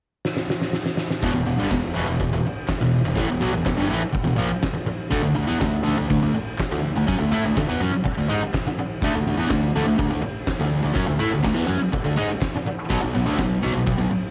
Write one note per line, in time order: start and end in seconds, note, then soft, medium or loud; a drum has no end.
0.25 snare medium
0.36 snare medium
0.50 snare medium
0.61 snare medium
0.73 snare medium
0.86 snare medium
0.97 snare loud
1.10 snare medium
1.22 1.34 E1 medium
1.22 1.32 E2 medium
1.22 1.33 B2 loud
1.22 kick loud
1.22 crash medium
1.33 1.46 E1 medium
1.33 1.44 E2 medium
1.33 1.44 B2 medium
1.46 1.58 E1 medium
1.46 1.58 E2 medium
1.46 1.58 B2 medium
1.58 1.71 G1 medium
1.58 1.70 G2 loud
1.58 1.70 D3 loud
1.71 1.94 E1 medium
1.71 1.91 E2 medium
1.71 1.91 B2 medium
1.71 kick loud
1.71 snare loud
1.71 clap medium
1.71 crash medium
1.94 2.07 E1 loud
1.94 2.06 E2 medium
1.94 2.07 B2 medium
2.07 2.19 E1 medium
2.07 2.19 E2 medium
2.07 2.19 B2 medium
2.20 2.31 E1 medium
2.20 2.32 E2 medium
2.20 2.32 B2 medium
2.20 kick loud
2.20 crash medium
2.33 2.44 E1 medium
2.33 2.45 E2 medium
2.33 2.45 B2 medium
2.45 muted fingered electric bass stroke soft
2.45 muted distorted electric guitar stroke medium
2.68 kick loud
2.68 snare loud
2.68 clap medium
2.68 crash medium
2.81 3.04 E1 medium
2.81 3.01 E2 medium
2.81 3.00 B2 medium
3.05 3.17 E1 medium
3.05 3.17 E2 medium
3.05 3.15 B2 medium
3.15 3.29 A1 medium
3.15 3.28 A2 medium
3.15 3.29 E3 loud
3.15 kick loud
3.15 crash medium
3.29 3.41 E1 medium
3.29 3.41 E2 medium
3.29 3.39 B2 medium
3.41 3.54 B1 medium
3.41 3.52 B2 loud
3.41 3.53 F#3 loud
3.53 3.66 E1 medium
3.53 3.65 E2 medium
3.53 3.65 B2 medium
3.66 3.78 E1 medium
3.66 3.77 E2 medium
3.66 3.79 B2 medium
3.66 kick loud
3.66 snare loud
3.66 clap loud
3.66 crash medium
3.77 3.90 G1 medium
3.77 3.89 G2 loud
3.77 3.88 D3 loud
3.88 4.02 A1 loud
3.88 4.01 A2 medium
3.88 4.02 E3 loud
4.01 muted distorted electric guitar stroke medium
4.01 muted fingered electric bass stroke soft
4.13 muted distorted electric guitar stroke medium
4.13 muted fingered electric bass stroke soft
4.13 kick loud
4.13 crash medium
4.24 4.38 E1 medium
4.24 4.38 E2 medium
4.24 4.36 B2 medium
4.37 4.51 A#1 loud
4.37 4.49 A#2 loud
4.37 4.50 F3 loud
4.49 muted distorted electric guitar stroke medium
4.49 muted fingered electric bass stroke soft
4.63 kick medium
4.63 snare loud
4.63 clap medium
4.63 crash medium
4.74 muted distorted electric guitar stroke medium
4.74 muted fingered electric bass stroke soft
4.86 muted distorted electric guitar stroke medium
4.86 muted fingered electric bass stroke soft
5.10 5.24 D2 medium
5.10 5.22 D3 loud
5.10 5.22 A3 loud
5.10 kick loud
5.10 crash medium
5.23 5.36 D2 medium
5.23 5.34 D3 medium
5.23 5.35 A3 medium
5.35 5.49 D2 medium
5.35 5.46 D3 medium
5.35 5.47 A3 medium
5.47 5.60 E2 medium
5.47 5.59 E3 medium
5.47 5.59 B3 medium
5.60 5.84 D2 medium
5.60 5.80 D3 medium
5.60 5.80 A3 medium
5.60 kick loud
5.60 snare loud
5.60 clap loud
5.60 crash medium
5.82 5.95 D3 medium
5.82 5.96 A3 medium
5.87 5.98 D2 loud
5.97 6.10 D2 medium
5.97 6.09 D3 medium
5.97 6.09 A3 medium
6.10 6.22 D2 medium
6.10 6.22 D3 medium
6.10 6.22 A3 medium
6.10 kick loud
6.10 crash medium
6.23 6.33 D2 medium
6.23 6.34 D3 medium
6.23 6.35 A3 medium
6.34 muted fingered electric bass stroke soft
6.34 muted distorted electric guitar stroke medium
6.58 kick loud
6.58 snare loud
6.58 clap loud
6.58 crash medium
6.71 6.94 D2 medium
6.71 6.90 D3 medium
6.71 6.91 A3 medium
6.95 7.07 D2 medium
6.95 7.06 D3 medium
6.95 7.08 A3 medium
7.07 7.19 F#2 medium
7.07 7.18 F#3 loud
7.07 7.19 C#4 loud
7.07 kick loud
7.07 crash medium
7.19 7.31 D2 medium
7.19 7.31 D3 medium
7.19 7.30 A3 medium
7.32 7.43 A2 medium
7.32 7.43 A3 loud
7.32 7.44 E4 loud
7.45 7.56 D2 medium
7.45 7.56 D3 medium
7.45 7.56 A3 medium
7.56 7.68 D2 medium
7.56 7.68 D3 medium
7.56 7.69 A3 medium
7.56 kick loud
7.56 snare loud
7.56 clap medium
7.56 crash medium
7.68 7.80 E2 medium
7.68 7.80 E3 medium
7.68 7.80 B3 medium
7.80 7.92 F#2 loud
7.80 7.92 F#3 medium
7.80 7.93 C#4 medium
7.93 muted distorted electric guitar stroke medium
7.93 muted fingered electric bass stroke soft
8.04 muted distorted electric guitar stroke medium
8.04 muted fingered electric bass stroke soft
8.04 kick loud
8.04 crash medium
8.18 8.29 D2 medium
8.18 8.30 D3 medium
8.18 8.29 A3 medium
8.29 8.41 G#2 loud
8.29 8.41 G#3 loud
8.29 8.41 D#4 loud
8.29 clap medium
8.42 muted fingered electric bass stroke soft
8.42 muted distorted electric guitar stroke medium
8.54 kick loud
8.54 snare loud
8.54 clap medium
8.54 crash medium
8.66 muted fingered electric bass stroke soft
8.66 muted distorted electric guitar stroke medium
8.78 muted fingered electric bass stroke soft
8.78 muted distorted electric guitar stroke medium
9.01 9.13 D2 medium
9.01 9.14 D3 loud
9.01 9.14 A3 medium
9.01 kick loud
9.01 crash medium
9.13 9.24 D2 medium
9.13 9.26 D3 medium
9.13 9.26 A3 medium
9.25 9.36 D2 medium
9.25 9.37 D3 medium
9.25 9.39 A3 medium
9.37 9.49 E2 medium
9.37 9.49 E3 loud
9.37 9.50 B3 loud
9.49 9.73 D2 medium
9.49 9.69 D3 medium
9.49 9.70 A3 medium
9.49 kick loud
9.49 snare loud
9.49 clap loud
9.49 crash medium
9.75 9.86 D2 loud
9.75 9.85 D3 medium
9.75 9.86 A3 loud
9.86 9.98 D2 medium
9.86 9.97 D3 medium
9.86 9.97 A3 medium
9.98 10.10 D2 medium
9.98 10.09 D3 medium
9.98 10.09 A3 medium
9.98 kick loud
9.98 crash medium
10.11 10.24 D2 medium
10.11 10.21 D3 medium
10.11 10.23 A3 medium
10.22 muted distorted electric guitar stroke medium
10.22 muted fingered electric bass stroke soft
10.47 kick loud
10.47 snare loud
10.47 clap medium
10.47 crash medium
10.60 10.83 D2 medium
10.60 10.79 D3 medium
10.60 10.79 A3 medium
10.83 10.95 D2 medium
10.83 10.93 D3 medium
10.83 10.95 A3 medium
10.94 11.07 F#2 medium
10.94 11.06 F#3 medium
10.94 11.06 C#4 loud
10.94 kick loud
10.94 crash medium
11.07 11.20 D2 medium
11.07 11.20 D3 medium
11.07 11.18 A3 medium
11.19 11.32 A2 medium
11.19 11.30 A3 loud
11.19 11.32 E4 loud
11.31 11.44 D2 medium
11.31 11.42 D3 medium
11.31 11.43 A3 medium
11.44 11.56 D2 medium
11.44 11.54 D3 medium
11.44 11.56 A3 medium
11.44 kick loud
11.44 snare loud
11.44 clap loud
11.44 crash medium
11.54 11.68 E2 medium
11.54 11.66 E3 medium
11.54 11.67 B3 medium
11.67 11.80 F#2 medium
11.67 11.79 F#3 medium
11.67 11.79 C#4 loud
11.79 muted distorted electric guitar stroke medium
11.79 muted fingered electric bass stroke soft
11.92 muted distorted electric guitar stroke medium
11.92 muted fingered electric bass stroke soft
11.92 kick loud
11.92 crash medium
12.04 12.17 D2 medium
12.04 12.17 D3 medium
12.04 12.16 A3 medium
12.16 12.29 G#2 medium
12.16 12.28 G#3 medium
12.16 12.29 D#4 loud
12.29 muted distorted electric guitar stroke medium
12.29 muted fingered electric bass stroke soft
12.41 kick loud
12.41 snare loud
12.41 clap medium
12.41 crash medium
12.55 muted fingered electric bass stroke soft
12.55 muted distorted electric guitar stroke medium
12.66 muted distorted electric guitar stroke medium
12.66 muted fingered electric bass stroke soft
12.89 13.01 B1 medium
12.89 13.00 B2 medium
12.89 13.00 F#3 loud
12.89 kick loud
12.89 crash medium
13.01 13.14 B1 medium
13.01 13.13 B2 medium
13.01 13.13 F#3 medium
13.14 13.26 B1 medium
13.14 13.25 B2 medium
13.14 13.26 F#3 medium
13.26 13.38 D2 medium
13.26 13.37 D3 loud
13.26 13.38 A3 loud
13.39 13.61 B1 medium
13.39 13.58 B2 medium
13.39 13.58 F#3 medium
13.39 kick loud
13.39 snare loud
13.39 clap loud
13.39 crash medium
13.62 13.75 B1 loud
13.62 13.73 B2 medium
13.62 13.73 F#3 medium
13.74 13.86 B1 medium
13.74 13.85 B2 medium
13.74 13.85 F#3 medium
13.87 13.98 B1 medium
13.87 13.97 B2 medium
13.87 13.97 F#3 medium
13.87 kick loud
13.87 crash medium
13.98 14.10 B1 medium
13.98 14.10 B2 medium
13.98 14.11 F#3 medium
14.11 muted distorted electric guitar stroke medium
14.11 muted fingered electric bass stroke soft